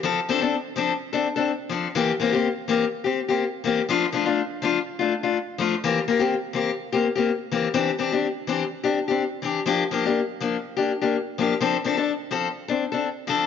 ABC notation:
X:1
M:4/4
L:1/16
Q:"Swing 16ths" 1/4=124
K:Cmix
V:1 name="Steel-string acoustic guitar"
[F,CA] z [F,CDA] [CDA] z2 [F,CDA] z2 [CDA] z [CDA] z2 [F,CDA] z | [E,B,CG] z [E,B,CG] [B,CG] z2 [E,B,CG] z2 [CG] z [B,CG] z2 [E,B,CG] z | [F,A,DF] z [F,A,DF] [A,DF] z2 [F,A,DF] z2 [A,DF] z [A,DF] z2 [F,A,DF] z | [E,B,CG] z [B,CG] [B,CG] z2 [E,B,CG] z2 [B,CG] z [B,CG] z2 [E,B,CG] z |
[E,CDG] z [E,CDG] [CDG] z2 [E,CDG] z2 [CDG] z [CDG] z2 [E,CDG] z | [F,B,DG] z [F,B,DG] [B,DG] z2 [F,B,D] z2 [B,DG] z [B,DG] z2 [F,B,DG] z | [F,CDA] z [F,CDA] [DA] z2 [F,CA] z2 [CD] z [CDA] z2 [F,CDA] z |]